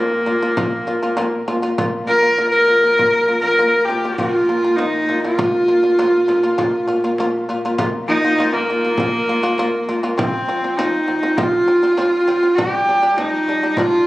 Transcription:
Already playing: A#2 A#3 F4
0.26 A#3 F4, frame drum
0.42 A#3 F4
0.57 A#2 A#3 F4, frame drum
0.87 A#3 F4, frame drum
1.03 A#3 F4
1.17 A#3 F4, frame drum
1.48 A#3 F4, frame drum
1.62 A#3 F4
1.78 A#3 F4, frame drum
2.07 A#3 F4 A#4, frame drum
2.22 A#3 F4
2.38 A#3 F4, frame drum
2.51 A#4
2.68 A#3 F4, frame drum
2.83 A#3 F4
2.99 A#3 F4, frame drum
3.28 A#3 F4, frame drum
3.41 A#3 F4 A#4
3.58 A#3 F4, frame drum
3.85 G4, frame drum
3.89 A#3 F4
4.04 A#3 F4
4.16 A#3 F4, frame drum
4.49 A#3 F4, frame drum
4.64 A#3 F4
4.76 A#3 D#4 F4, frame drum
5.09 A#3 F4, frame drum
5.20 F4
5.24 A#3 F4
5.38 A#2 A#3 F4, frame drum
5.68 A#3 F4, frame drum
5.83 A#3 F4
5.99 A#3 F4, frame drum
6.28 A#3 F4, frame drum
6.43 A#3 F4
6.58 A#3 F4, frame drum
6.88 A#3 F4, frame drum
7.04 A#3 F4
7.18 A#3 F4, frame drum
7.48 A#3 F4, frame drum
7.65 A#3 F4
7.78 A#3 F4, frame drum
8.08 A#3 D#4 F4, frame drum
8.24 A#3 F4
8.39 A#3 F4, frame drum
8.53 A#3
8.70 A#3 F4
8.85 A#3 F4
8.98 A#3 F4, frame drum
9.28 A#3 F4, frame drum
9.43 A#3 F4
9.58 A#3 F4, frame drum
9.89 A#3 F4, frame drum
10.03 A#3 F4
10.18 F3 C4, frame drum
10.48 F3 C4, frame drum
10.64 F3 C4
10.78 F3 C4 D#4, frame drum
11.08 F3 C4, frame drum
11.23 F3 C4
11.37 F3 C4 F4, frame drum
11.68 F3 C4
11.83 F3 C4
11.97 F3 C4, frame drum
12.28 F3 C4, frame drum
12.43 F3 C4
12.56 G3 D4 G4, frame drum
12.88 G3 D4, frame drum
13.03 G3 D4
13.17 G3 D4 D#4, frame drum
13.47 G3 D4, frame drum
13.63 G3 D4
13.77 G3 D4 F4, frame drum

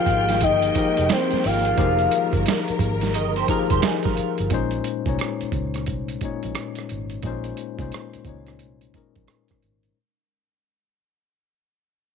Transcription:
Already playing: D#3 F3 G#3 A#3 D#4 G4 G#4 A#4 F5 G5
0.06 G#1, kick, closed hi-hat
0.28 snare, closed hi-hat
0.41 G1 D#5, kick, closed hi-hat
0.62 closed hi-hat
0.75 F3 D#4 G4 G#4 A#4, kick, closed hi-hat
0.97 F1, closed hi-hat
1.09 C5, snare, closed hi-hat
1.30 muted fingered electric bass stroke, snare, closed hi-hat
1.44 G#1 F5, open hi-hat
1.65 closed hi-hat
1.77 F1 F3 D#4 G4 G#4 A#4, kick, closed hi-hat
1.99 closed hi-hat
2.11 closed hi-hat
2.33 G1, kick, closed hi-hat
2.46 snare, closed hi-hat
2.68 muted fingered electric bass stroke, closed hi-hat
2.79 G#1, kick, closed hi-hat
3.01 snare, closed hi-hat
3.14 G1 A#4 D#5, closed hi-hat
3.36 G4 C5, closed hi-hat
3.48 F3 D#4 F4 G4 G#4 A#4, kick, closed hi-hat
3.70 F1 G4 C5, kick, closed hi-hat
3.82 D#4 G#4, snare, closed hi-hat
4.03 F4 A#4, kick, snare, closed hi-hat
4.17 muted fingered electric bass stroke, closed hi-hat
4.38 G1, closed hi-hat
4.50 A#1 A#2 G#3 C#4 D#4, kick, closed hi-hat
4.54 C5
4.71 closed hi-hat
4.84 closed hi-hat
5.06 C2 A#2 G#3 C#4 D#4 C#5, kick, closed hi-hat
5.19 cross-stick, closed hi-hat
5.41 muted fingered electric bass stroke, closed hi-hat
5.52 C#2, kick, closed hi-hat
5.74 cross-stick, closed hi-hat
5.86 C2, kick, closed hi-hat
6.08 closed hi-hat
6.21 A#2 G#3 C#4 D#4, kick, closed hi-hat
6.25 C#5
6.43 A#1, closed hi-hat
6.55 cross-stick, closed hi-hat
6.75 cross-stick, closed hi-hat
6.89 G#1, closed hi-hat
7.10 closed hi-hat
7.23 A#1 A#2 G#3 C#4 D#4, kick, closed hi-hat
7.27 C5
7.44 closed hi-hat
7.57 closed hi-hat
7.78 C2 A#2 G#3 C#4 D#4 C5, kick, closed hi-hat
7.92 cross-stick, closed hi-hat
8.13 muted fingered electric bass stroke, closed hi-hat
8.25 C#2 A#2 G#3 C#4 D#4, kick, closed hi-hat
8.29 C#5
8.47 cross-stick, closed hi-hat
8.59 C2, closed hi-hat
8.81 closed hi-hat
8.93 A#2 G#3 C#4 D#4 A#4, kick, closed hi-hat
9.15 A#1, kick, closed hi-hat
9.28 cross-stick, closed hi-hat
9.48 kick, cross-stick, closed hi-hat
9.62 G#1, closed hi-hat
9.83 closed hi-hat

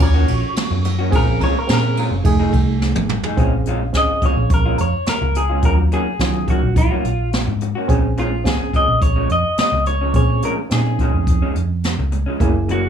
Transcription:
Already playing: C#4
0.00 D#2 F4 F#4 C#5, muted clean electric guitar stroke, kick, ride
0.14 D#3 A#3 C#4 F#4
0.28 A#1, muted clean electric guitar stroke, ride
0.56 muted fingered electric bass stroke, snare, ride
0.70 F#2, muted clean electric guitar stroke
0.85 muted clean electric guitar stroke, ride
0.99 A#3 C#4 F#4
1.11 A#1 A#2 G#3 C4 C#4 F4 G#4, kick, ride
1.16 A#4
1.27 muted clean electric guitar stroke
1.41 A#2 G#3 C#4 F4 C#5, kick, ride
1.55 A#4, muted clean electric guitar stroke
1.67 A#2 C4 C#4 G#4, snare, ride
1.73 A#4
1.83 muted clean electric guitar stroke
1.97 A#2 G#3 C#4 F4, ride
2.11 F#1, muted clean electric guitar stroke
2.24 F1 A3 D#4 G#4, muted clean electric guitar stroke, kick, ride
2.39 F3 A3 D#4 G#4
2.53 C2, muted clean electric guitar stroke, kick, ride
2.82 snare
2.95 G#1, muted clean electric guitar stroke, high tom
3.09 muted clean electric guitar stroke, mid tom
3.23 A3 D#4 G#4, floor tom
3.37 A#1 A#2 G#3 C4 C#4 F4 G#4, kick, closed hi-hat
3.53 muted clean electric guitar stroke
3.66 A#2 G#3 C#4 F4, closed hi-hat
3.81 muted clean electric guitar stroke
3.93 G#1 C4 C#4 G#4, kick, snare, closed hi-hat
3.97 D#5
4.09 muted clean electric guitar stroke
4.22 A#2 G#3 C#4 F4 C#5, kick, closed hi-hat
4.36 A#1, muted clean electric guitar stroke
4.50 muted clean electric guitar stroke, kick, closed hi-hat
4.54 A#4
4.66 A#2 G#3 C#4 F4
4.78 F2 C#5, muted clean electric guitar stroke, closed hi-hat
5.06 A#4, muted fingered electric bass stroke, snare, closed hi-hat
5.21 C#2, muted clean electric guitar stroke
5.35 G#4, muted clean electric guitar stroke, closed hi-hat
5.49 G#3 C#4 F4
5.62 D#2 D#3 F#3 A#3 C#4 F4 F#4 A#4, kick, closed hi-hat
5.78 muted clean electric guitar stroke
5.92 D#3 A#3 C#4 F#4 G#4, closed hi-hat
6.06 muted clean electric guitar stroke
6.20 D#3 F#3 C#4 F4, kick, snare, closed hi-hat
6.34 muted clean electric guitar stroke
6.48 D#3 A#3 C#4 F#4, kick, closed hi-hat
6.62 A#1, muted clean electric guitar stroke
6.76 F4, muted clean electric guitar stroke, kick, closed hi-hat
6.91 D#3 A#3 C#4 F#4
7.04 A#1, muted clean electric guitar stroke, closed hi-hat
7.33 snare, closed hi-hat
7.47 G#2, muted clean electric guitar stroke
7.61 muted clean electric guitar stroke, closed hi-hat
7.75 A#3 C#4 F#4
7.88 A#1 A#2 F3 G#3 C4 C#4 G#4, kick, closed hi-hat
8.04 muted clean electric guitar stroke
8.17 A#2 F3 G#3 C#4 F4, closed hi-hat
8.31 muted clean electric guitar stroke
8.44 G#1 C4 C#4 G#4, kick, snare, closed hi-hat
8.60 muted clean electric guitar stroke
8.74 A#2 F3 G#3 C#4 D#5, kick, closed hi-hat
8.87 A#1, muted clean electric guitar stroke
9.02 C#5, muted clean electric guitar stroke, kick, closed hi-hat
9.16 A#2 F3 G#3 C#4
9.29 F2 D#5, muted clean electric guitar stroke, closed hi-hat
9.58 D#5, muted fingered electric bass stroke, snare, closed hi-hat
9.72 C#2, muted clean electric guitar stroke
9.86 C#5, muted clean electric guitar stroke, closed hi-hat
10.01 F3 G#3 C#4
10.14 A#2 C4 C#4 G#4 C#5, kick, closed hi-hat
10.30 muted clean electric guitar stroke
10.42 A#2 F3 G#3 C#4 A#4, closed hi-hat
10.59 muted clean electric guitar stroke
10.70 A#2 C4 C#4 D#4 G#4, snare, closed hi-hat
10.87 muted clean electric guitar stroke
10.99 A#2 F3 G#3 C#4, kick, closed hi-hat
11.14 F2, muted clean electric guitar stroke
11.27 muted clean electric guitar stroke, kick, closed hi-hat
11.42 A#2 F3 G#3 C#4
11.56 F2, muted clean electric guitar stroke, closed hi-hat
11.84 snare, closed hi-hat
11.98 C#2, muted clean electric guitar stroke
12.12 muted clean electric guitar stroke, closed hi-hat
12.26 F3 G#3 C#4
12.40 F#1 F#2 E3 A#3 C#4 E4 G#4, kick, closed hi-hat
12.54 muted clean electric guitar stroke
12.69 F#2 E3 A#3 C#4 F#4, closed hi-hat
12.83 muted clean electric guitar stroke

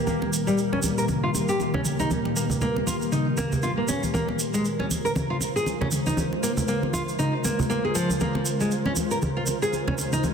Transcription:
Already playing: A#2 D#3 G3 A#3 G4 A#4
0.07 A#3, high conga, shaker
0.22 muted conga
0.33 shaker
0.47 G3, muted conga, shaker
0.58 shaker
0.72 C#4, muted conga
0.83 high conga, shaker
0.98 A#4, shaker
1.08 mid tom, muted conga, high conga, shaker
1.23 F4
1.35 muted conga, shaker
1.49 G4, shaker
1.60 muted conga, shaker
1.74 C#4, high conga, low conga
1.85 mid tom, muted conga, shaker
1.99 D#4, high conga, shaker
2.11 high conga, shaker
2.25 muted conga
2.36 A#3, shaker
2.50 muted conga, low conga, shaker
2.61 A#3, low conga, shaker
2.76 muted conga
2.87 F4, high conga, shaker
3.02 shaker
3.12 D#4, mid tom, muted conga, shaker
3.37 A#3, mid tom, muted conga, high conga, shaker
3.52 low conga, shaker
3.63 F4, muted conga, shaker
3.77 A#3
3.88 C#4, muted conga, shaker
4.03 high conga, shaker
4.13 C#3 G#3 A#3 F4 A#4 C5, high conga, shaker
4.29 muted conga
4.39 shaker
4.54 G#3, muted conga, shaker
4.65 shaker
4.79 C#4, muted conga
4.91 high conga, shaker
5.05 A#4, shaker
5.15 mid tom, muted conga, high conga, shaker
5.30 F4
5.41 muted conga, shaker
5.56 G#4, shaker
5.66 muted conga, shaker
5.81 C#4, high conga, low conga
5.91 mid tom, muted conga, shaker
6.06 D#4, high conga, shaker
6.17 high conga, shaker
6.33 muted conga
6.43 A#3, shaker
6.57 muted conga, low conga, shaker
6.68 A#3, shaker
6.83 muted conga
6.93 F4, high conga, shaker
7.09 shaker
7.19 D#4, mid tom, muted conga, shaker
7.44 A#3, muted conga, shaker
7.59 low conga, shaker
7.70 A#3, muted conga, shaker
7.85 G#4
7.95 F3, muted conga, shaker
8.10 high conga, shaker
8.20 A#3, high conga, shaker
8.35 muted conga
8.46 shaker
8.61 G#3, muted conga, shaker
8.71 shaker
8.85 C#4, muted conga
8.96 high conga, shaker
9.11 A#4, shaker
9.22 mid tom, muted conga, high conga, shaker
9.37 F4
9.46 muted conga, shaker
9.62 G#4, shaker
9.73 muted conga, shaker
9.87 C#4, high conga, low conga
9.98 mid tom, muted conga, shaker
10.13 D#4, high conga, shaker
10.23 high conga, shaker

